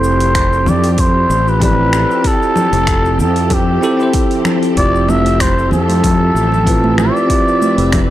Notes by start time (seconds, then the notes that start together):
Already playing: F1 F3 C4 E4 G4 A4 C5 E5
0.04 shaker
0.20 open hi-hat, shaker
0.35 finger snap, kick, open hi-hat, shaker
0.53 shaker
0.66 F2 D5, low conga, shaker
0.84 open hi-hat, shaker
0.93 D5
0.98 C5, kick, open hi-hat, shaker
1.30 A1, shaker
1.48 B4, shaker
1.60 C4 E4 G4 D5, kick, open hi-hat, low conga, shaker
1.64 B4
1.93 finger snap, shaker
2.11 shaker
2.22 C4 E4 G4, kick, open hi-hat, shaker
2.27 A4
2.43 shaker
2.56 low conga, shaker
2.73 F1, open hi-hat, shaker
2.87 finger snap, kick, open hi-hat, shaker
3.05 shaker
3.19 F2 A4, shaker
3.36 open hi-hat, shaker
3.50 G4, kick, open hi-hat, low conga, shaker
3.81 C4 E4 G4 A4, shaker
3.97 C4 E4 G4, shaker
4.03 C5
4.13 kick, open hi-hat, shaker
4.31 open hi-hat
4.45 finger snap, low conga, shaker
4.63 open hi-hat, shaker
4.75 F1 C4 E4 F4 D5, kick, open hi-hat, shaker
4.81 G4
4.95 shaker
5.08 E5, high conga, low conga, shaker
5.26 open hi-hat, shaker
5.40 C5, finger snap, kick, open hi-hat, shaker
5.59 shaker
5.71 F2 A4, low conga, shaker
5.89 open hi-hat, high conga, shaker
6.04 kick, open hi-hat, low conga, shaker
6.35 A1, shaker
6.52 low conga, shaker
6.66 C4 E4 F4 B4, kick, open hi-hat, shaker
6.84 high conga
6.98 D5, finger snap, low conga, shaker
7.17 shaker
7.27 C4 E4 F4 B4, kick, open hi-hat, shaker
7.33 G4
7.48 shaker
7.62 high conga, shaker
7.78 F1, open hi-hat, shaker
7.92 finger snap, kick, open hi-hat, low conga, shaker